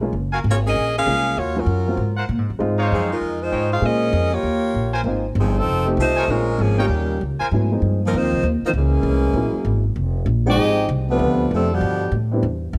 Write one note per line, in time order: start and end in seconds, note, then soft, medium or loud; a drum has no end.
0.00 0.12 B1 medium
0.00 0.12 G#3 medium
0.00 0.12 A#3 medium
0.00 0.13 C#4 medium
0.00 0.13 F4 medium
0.13 0.43 F#1 medium
0.32 0.40 F#4 medium
0.32 0.41 A#4 medium
0.32 0.41 F5 medium
0.32 0.41 G#5 medium
0.44 0.74 G#1 medium
0.50 0.58 A#3 medium
0.50 0.58 F4 medium
0.50 0.58 G#4 medium
0.50 0.58 C#5 medium
0.66 0.94 C#4 medium
0.66 0.94 G#4 medium
0.66 0.94 A#4 medium
0.66 0.94 D#5 loud
0.75 1.05 A#1 medium
0.98 1.36 C#4 medium
0.98 1.36 G#4 medium
0.98 1.36 A#4 medium
0.98 1.36 F5 loud
1.06 1.36 C2 medium
1.06 1.37 G#3 medium
1.06 1.37 A#3 medium
1.06 1.37 C#4 medium
1.06 1.38 F4 medium
1.37 1.66 D#2 medium
1.37 1.56 A#3 medium
1.37 1.57 F4 medium
1.37 1.57 F#4 medium
1.37 1.56 C#5 medium
1.55 1.66 F#3 soft
1.55 1.66 A#3 medium
1.55 1.66 C#4 soft
1.55 1.67 F4 medium
1.59 2.19 F#3 medium
1.59 2.00 C#4 medium
1.59 2.19 F4 medium
1.59 2.19 A#4 medium
1.66 1.97 F#2 medium
1.86 1.97 F#3 medium
1.86 1.98 A#3 soft
1.86 1.98 C4 medium
1.86 1.98 F4 medium
1.97 2.28 G#2 medium
2.17 2.25 F4 medium
2.17 2.25 A#4 medium
2.17 2.25 C5 medium
2.17 2.25 F#5 medium
2.29 2.38 A#2 medium
2.38 2.49 G#2 medium
2.50 2.59 F#2 medium
2.59 2.90 G#2 medium
2.59 3.05 G#3 medium
2.59 3.05 C4 medium
2.59 3.06 D#4 medium
2.59 3.06 F4 medium
2.79 3.19 D#4 loud
2.79 3.19 C5 medium
2.79 3.19 C#5 medium
2.79 3.19 F5 loud
2.92 3.20 F#2 medium
2.92 3.10 F3 medium
2.92 3.10 C4 medium
2.92 3.10 D#4 medium
2.92 3.09 G#4 medium
3.11 3.39 G#3 medium
3.11 3.39 D#4 medium
3.11 3.39 F4 medium
3.11 3.39 A#4 medium
3.21 3.51 F2 medium
3.41 3.72 G#3 medium
3.41 3.71 D#4 medium
3.41 3.72 F4 medium
3.41 3.72 C5 medium
3.52 3.81 G#2 medium
3.52 3.83 D#4 medium
3.52 3.83 C5 medium
3.52 3.83 C#5 medium
3.52 3.83 G5 medium
3.72 3.83 D#4 medium
3.72 3.82 G#4 medium
3.72 3.83 C5 medium
3.72 3.83 F5 medium
3.81 4.12 A#2 medium
3.81 4.28 G#3 medium
3.81 4.29 C#4 soft
3.81 4.33 C#4 medium
3.81 4.29 F4 medium
3.81 4.33 G#4 medium
3.81 4.33 A#4 medium
3.81 4.29 C5 soft
3.81 4.33 D#5 loud
4.13 4.43 F2 medium
4.33 4.95 A#3 medium
4.33 4.95 F4 medium
4.33 4.95 G4 medium
4.33 4.95 C#5 medium
4.43 4.74 D#2 medium
4.74 5.03 A#1 medium
4.94 5.02 F4 medium
4.94 5.02 A#4 medium
4.94 5.02 C5 medium
4.94 5.02 G#5 medium
5.04 5.35 G#1 medium
5.04 5.22 A#3 medium
5.04 5.23 C4 medium
5.04 5.23 D#4 medium
5.04 5.23 F4 medium
5.35 5.66 G1 loud
5.39 5.56 F3 medium
5.39 5.56 C4 medium
5.39 5.56 D#4 medium
5.39 5.56 G#4 medium
5.58 5.88 F3 medium
5.58 5.88 C4 medium
5.58 5.88 D#4 medium
5.58 5.88 A4 medium
5.66 5.96 F1 medium
5.85 6.26 A3 medium
5.85 6.26 C4 medium
5.85 6.26 D#4 medium
5.85 6.27 G4 medium
5.97 6.27 C2 medium
5.97 6.28 A3 medium
5.97 6.28 D#4 medium
6.01 6.28 F4 medium
6.01 6.28 C5 loud
6.17 6.25 F4 medium
6.17 6.25 A#4 medium
6.17 6.25 C#5 medium
6.17 6.25 G#5 loud
6.28 6.58 A#1 medium
6.28 6.46 G#3 soft
6.28 6.60 G#3 medium
6.28 6.46 C4 soft
6.28 6.46 C#4 soft
6.28 6.60 C#4 medium
6.28 6.47 F4 medium
6.28 6.60 F4 medium
6.28 6.60 A#4 medium
6.58 6.88 G#1 medium
6.58 6.79 F3 medium
6.58 6.80 A#3 medium
6.58 6.80 C#4 medium
6.58 6.79 G#4 medium
6.78 7.22 A#2 medium
6.78 7.22 C#3 medium
6.78 7.22 D#3 medium
6.78 6.89 G3 medium
6.78 7.22 G3 medium
6.78 6.89 A#3 medium
6.78 7.22 A#3 medium
6.78 6.89 C#4 medium
6.78 6.87 D#4 medium
6.78 6.90 F4 medium
6.78 7.22 G4 medium
6.78 6.87 A#4 medium
6.78 6.87 C#5 medium
6.78 6.87 G5 medium
6.82 7.23 C#4 medium
6.89 7.19 D#2 medium
7.21 7.39 C#2 medium
7.40 7.48 F4 medium
7.40 7.48 A#4 medium
7.40 7.48 C5 medium
7.40 7.48 G#5 loud
7.40 muted upright bass stroke soft
7.51 7.81 G#2 medium
7.51 7.69 F#3 medium
7.51 7.69 A3 soft
7.51 7.69 B3 soft
7.51 7.70 C#4 soft
7.51 7.70 E4 soft
7.71 7.98 F3 soft
7.71 7.98 G#3 soft
7.71 7.98 A#3 soft
7.71 7.98 C4 soft
7.71 7.99 D#4 medium
7.82 8.12 G2 medium
8.03 8.14 D#3 medium
8.03 8.14 F3 medium
8.03 8.15 F3 medium
8.03 8.13 A#3 medium
8.03 8.15 C4 medium
8.03 8.15 D#4 medium
8.03 8.15 A#4 medium
8.13 8.23 F2 medium
8.13 8.45 D#3 medium
8.13 8.46 F3 medium
8.13 8.45 A#3 medium
8.13 8.45 C4 medium
8.13 8.45 D#4 medium
8.13 8.46 F4 medium
8.13 8.46 C5 loud
8.23 8.32 D#2 medium
8.33 8.42 C2 medium
8.43 8.61 D#2 medium
8.62 8.71 D#3 medium
8.62 8.71 A#3 medium
8.62 8.70 D#4 medium
8.62 8.70 C5 medium
8.62 muted upright bass stroke soft
8.66 8.71 F3 medium
8.66 8.71 C4 medium
8.66 8.71 F4 medium
8.73 9.03 C#2 medium
8.73 9.83 G#3 medium
8.77 9.83 E3 medium
8.77 9.83 A#3 medium
8.77 9.83 C#4 medium
8.77 9.83 G#4 medium
9.03 9.33 C2 medium
9.33 9.52 A#1 medium
9.33 9.81 F#3 soft
9.33 9.82 G#3 soft
9.33 9.82 A#3 soft
9.33 9.82 C#4 soft
9.33 9.82 E4 medium
9.53 muted upright bass stroke soft
9.65 9.95 G#1 medium
9.96 10.25 F1 medium
10.26 10.56 A#1 medium
10.46 10.87 F3 medium
10.46 10.87 G#3 medium
10.46 10.86 G#3 medium
10.46 10.86 C4 medium
10.46 10.87 C4 medium
10.46 10.86 D#4 medium
10.46 10.87 D#4 medium
10.46 10.87 G4 loud
10.46 10.87 G#4 medium
10.46 10.87 D#5 loud
10.46 10.87 G5 medium
10.57 10.88 G#1 medium
10.89 11.18 C2 loud
11.08 11.48 C3 medium
11.08 11.48 F3 medium
11.08 11.49 A3 medium
11.08 11.48 B3 medium
11.08 11.49 D4 medium
11.08 11.49 F4 medium
11.08 11.49 B4 medium
11.19 11.50 D2 medium
11.51 11.80 F2 medium
11.51 11.71 C3 medium
11.51 11.70 F3 medium
11.51 11.70 A3 medium
11.51 11.70 C4 medium
11.51 11.70 D4 medium
11.51 11.70 A4 medium
11.72 12.14 B2 medium
11.72 12.14 D3 medium
11.72 12.14 F3 medium
11.72 12.14 G3 medium
11.72 12.14 B3 medium
11.72 12.14 D4 medium
11.72 12.14 G4 medium
11.81 12.11 G2 medium
12.12 12.42 A2 medium
12.31 12.42 G3 medium
12.31 12.42 B3 soft
12.31 12.42 C4 medium
12.31 12.43 D4 medium
12.31 12.43 E4 medium
12.43 12.73 E2 medium
12.73 12.78 D2 loud